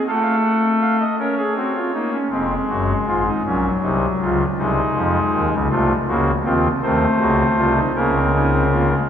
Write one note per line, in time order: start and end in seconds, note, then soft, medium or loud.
0.07 1.03 A3 medium
0.07 1.03 A4 medium
0.07 0.10 F5 medium
0.14 0.20 F#5 medium
0.21 0.35 F5 medium
0.44 0.67 F#5 loud
0.81 0.97 F5 medium
1.00 1.16 D#5 medium
1.19 1.42 C#4 medium
1.19 1.35 A#4 medium
1.19 2.17 C#5 medium
1.37 1.53 G#4 medium
1.56 1.79 C4 medium
1.56 1.72 F#4 medium
1.75 1.91 F4 medium
1.93 2.18 A#3 medium
1.93 2.10 D#4 medium
2.12 2.29 C#4 medium
2.30 2.54 F1 medium
2.30 2.54 F2 medium
2.30 3.28 G#3 medium
2.30 2.54 C4 medium
2.69 2.93 F#1 medium
2.69 2.93 F#2 medium
2.69 2.93 F#4 medium
3.06 3.30 G#1 medium
3.06 3.30 G#2 medium
3.06 3.23 F4 medium
3.27 3.43 D#4 medium
3.46 3.69 A#1 medium
3.46 3.69 A#2 medium
3.46 4.42 F#3 medium
3.46 3.69 C#4 medium
3.83 4.06 C2 medium
3.83 4.06 C3 medium
3.83 4.06 D#4 medium
4.21 4.44 C#2 medium
4.21 4.44 C#3 medium
4.21 4.44 F4 medium
4.58 4.81 C2 medium
4.58 4.81 C3 medium
4.58 5.55 G#3 medium
4.58 5.54 D#4 medium
4.95 5.18 F2 medium
4.95 5.19 F3 medium
5.33 5.49 D#2 medium
5.33 5.49 D#3 medium
5.52 5.68 C#2 medium
5.52 5.68 C#3 medium
5.69 5.93 C2 medium
5.69 5.93 C3 medium
5.69 5.93 A3 medium
5.69 5.93 F4 medium
6.08 6.31 C#2 medium
6.08 6.31 C#3 medium
6.08 6.31 A#3 medium
6.08 6.31 F#4 medium
6.44 6.68 D#2 medium
6.44 6.68 D#3 medium
6.44 6.68 C4 medium
6.44 6.68 F4 medium
6.82 7.05 D#2 medium
6.82 7.06 D#3 medium
6.82 7.79 A3 medium
6.82 7.05 C4 medium
6.82 7.79 C5 medium
7.20 7.43 C#2 medium
7.20 7.43 C#3 medium
7.20 7.43 F#4 medium
7.57 7.80 C2 medium
7.57 7.80 C3 medium
7.57 7.73 F4 medium
7.76 7.92 D#4 medium
7.95 8.93 C#2 medium
7.95 8.94 C#3 medium
7.95 8.12 A#3 medium
7.95 8.19 C#4 medium
7.95 8.93 A#4 medium
8.15 8.31 C4 medium
8.34 8.50 C#4 medium
8.34 8.58 D#4 medium
8.51 8.68 C4 medium
8.72 8.88 A#3 medium
8.72 8.95 F4 medium
8.91 9.07 G#3 medium